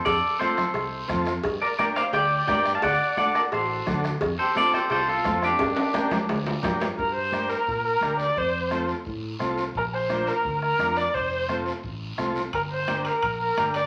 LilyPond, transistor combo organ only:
\new Staff \with { instrumentName = "Transistor combo organ" } { \time 4/4 \key g \minor \tempo 4 = 173 r4 <c' f' a'>8 r4. <c' f' a'>8 r8 | r4 <d' g' bes'>8 r4. <d' g' bes'>8 r8 | r4 <d' fis' a'>8 r4. <d' fis' a'>8 r8 | r4 <c' f' a'>8 r4. <c' f' a'>8 r8 |
r4 <d' g' bes'>8 r4. <d' g' bes'>8 r8 | r4 <d' g' bes'>8 r4. <d' g' bes'>8 r8 | r4 <c' f' a'>8 r4. <c' f' a'>8 r8 | r4 <d' f' bes'>8 r4. <d' f' bes'>8 r8 |
r4 <c' f' a'>8 r4. <c' f' a'>8 r8 | r4 <d' g' bes'>8 r4. <d' g' bes'>8 r8 | }